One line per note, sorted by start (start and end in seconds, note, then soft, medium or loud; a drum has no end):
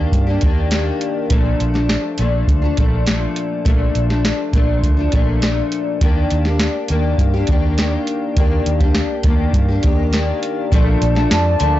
0.00 0.27 D#3 medium
0.00 0.28 A#3 medium
0.00 0.28 D4 medium
0.00 0.25 G4 medium
0.12 0.36 G2 medium
0.12 kick medium
0.12 closed hi-hat medium
0.27 0.41 A#3 soft
0.27 0.43 D4 medium
0.27 0.42 G4 medium
0.41 0.90 D#2 medium
0.41 0.69 D#3 medium
0.41 0.71 A#3 medium
0.41 0.72 D4 medium
0.41 0.73 G4 medium
0.41 kick medium
0.41 closed hi-hat medium
0.71 1.30 D#3 medium
0.71 1.31 A#3 medium
0.71 1.32 D4 medium
0.71 1.32 G4 medium
0.71 snare medium
0.71 closed hi-hat medium
1.01 closed hi-hat medium
1.30 1.54 A#1 medium
1.30 1.75 A#2 medium
1.30 1.75 F3 medium
1.30 1.74 A3 medium
1.30 1.72 D4 medium
1.30 kick loud
1.30 closed hi-hat medium
1.60 1.95 A#1 medium
1.60 closed hi-hat medium
1.74 2.19 F3 soft
1.74 2.19 A3 soft
1.74 2.18 D4 medium
1.74 snare soft
1.89 snare loud
1.89 closed hi-hat medium
2.18 2.43 A#1 medium
2.18 2.63 A#2 medium
2.18 2.64 F3 medium
2.18 2.63 A3 medium
2.18 closed hi-hat medium
2.22 2.61 D4 medium
2.47 2.72 D2 medium
2.47 kick medium
2.47 closed hi-hat medium
2.62 2.77 F3 medium
2.62 2.78 A3 medium
2.62 2.77 D4 medium
2.77 3.25 A#1 medium
2.77 3.05 A#2 medium
2.77 3.06 F3 medium
2.77 3.07 A3 medium
2.77 3.08 D4 medium
2.77 kick medium
2.77 closed hi-hat medium
3.06 3.64 A#2 medium
3.06 3.65 F3 medium
3.06 3.65 A3 medium
3.06 3.67 D4 medium
3.06 snare loud
3.06 closed hi-hat medium
3.36 closed hi-hat medium
3.65 3.90 A#1 loud
3.65 4.10 A#2 medium
3.65 4.10 F3 medium
3.65 4.10 A3 medium
3.65 4.09 D4 medium
3.65 kick loud
3.65 closed hi-hat medium
3.95 4.31 A#1 medium
3.95 closed hi-hat medium
4.10 4.53 F3 soft
4.10 4.54 A3 soft
4.10 4.54 D4 medium
4.10 snare soft
4.25 snare loud
4.25 closed hi-hat medium
4.53 4.83 A#1 medium
4.53 4.98 A#2 medium
4.53 4.98 F3 medium
4.53 4.97 A3 medium
4.53 4.96 D4 medium
4.53 kick medium
4.53 closed hi-hat medium
4.83 5.07 D2 medium
4.83 kick medium
4.83 closed hi-hat medium
4.97 5.11 F3 medium
4.97 5.13 A3 medium
4.97 5.12 D4 medium
5.12 5.60 A#1 medium
5.12 5.40 A#2 medium
5.12 5.41 F3 medium
5.12 5.43 A3 medium
5.12 5.43 D4 medium
5.12 kick medium
5.12 closed hi-hat medium
5.41 6.01 A#2 medium
5.41 6.01 F3 medium
5.41 6.02 A3 medium
5.41 6.02 D4 medium
5.41 snare medium
5.41 closed hi-hat medium
5.72 closed hi-hat medium
6.01 6.25 D#2 medium
6.01 6.46 D#3 medium
6.01 6.46 A#3 medium
6.01 6.46 D4 medium
6.01 6.44 G4 medium
6.01 kick loud
6.01 closed hi-hat medium
6.31 6.67 D#2 medium
6.31 closed hi-hat medium
6.45 6.90 A#3 soft
6.45 6.90 D4 soft
6.45 6.90 G4 medium
6.45 snare soft
6.60 snare loud
6.60 closed hi-hat medium
6.88 7.13 D#2 medium
6.88 7.34 D#3 medium
6.88 7.34 A#3 medium
6.88 7.35 D4 medium
6.88 closed hi-hat medium
6.93 7.32 G4 medium
7.18 7.42 G2 medium
7.18 kick medium
7.18 closed hi-hat medium
7.34 7.49 A#3 soft
7.34 7.49 D4 medium
7.34 7.48 G4 medium
7.47 7.96 D#2 medium
7.47 7.77 D#3 medium
7.47 7.78 A#3 medium
7.47 kick medium
7.47 closed hi-hat medium
7.51 7.79 D4 medium
7.51 7.80 G4 medium
7.78 8.35 D#3 medium
7.78 8.37 A#3 medium
7.78 8.38 D4 medium
7.78 8.38 G4 medium
7.78 snare medium
7.78 closed hi-hat medium
8.07 closed hi-hat medium
8.37 8.60 D#2 medium
8.37 8.81 D#3 medium
8.37 8.81 A#3 medium
8.37 8.81 D4 medium
8.37 8.79 G4 medium
8.37 kick medium
8.37 closed hi-hat medium
8.66 9.01 D#2 medium
8.66 closed hi-hat medium
8.80 9.24 A#3 soft
8.80 9.25 D4 medium
8.80 9.24 G4 medium
8.80 kick medium
8.80 closed hi-hat soft
8.95 snare loud
8.95 closed hi-hat medium
9.23 9.48 D#2 medium
9.23 9.69 D#3 medium
9.23 9.69 A#3 medium
9.23 9.69 D4 medium
9.23 kick medium
9.23 closed hi-hat medium
9.28 9.67 G4 medium
9.53 9.77 G2 medium
9.53 kick medium
9.53 closed hi-hat medium
9.68 9.83 A#3 soft
9.68 9.84 D4 medium
9.68 9.83 G4 medium
9.83 10.31 D#2 medium
9.83 10.11 D#3 medium
9.83 10.13 A#3 medium
9.83 10.14 D4 medium
9.83 10.14 G4 medium
9.83 kick medium
9.83 closed hi-hat medium
10.12 10.72 D#3 medium
10.12 10.73 A#3 medium
10.12 10.74 D4 medium
10.12 10.73 G4 medium
10.12 snare medium
10.12 closed hi-hat medium
10.43 closed hi-hat medium
10.72 10.96 A#1 loud
10.72 11.16 A#2 medium
10.72 11.16 F3 medium
10.72 11.16 A3 medium
10.72 11.14 D4 medium
10.72 11.80 F4 medium
10.72 11.80 D5 medium
10.72 11.80 A5 medium
10.72 kick loud
10.72 closed hi-hat medium
11.02 11.25 A#1 medium
11.02 closed hi-hat medium
11.15 11.59 F3 soft
11.15 11.60 A3 medium
11.15 11.60 D4 medium
11.15 snare soft
11.31 11.54 F2 medium
11.31 snare loud
11.31 closed hi-hat loud
11.59 11.80 D2 medium
11.59 11.80 A#2 medium
11.59 11.80 F3 medium
11.59 11.80 A3 medium
11.59 11.80 D4 medium
11.59 closed hi-hat medium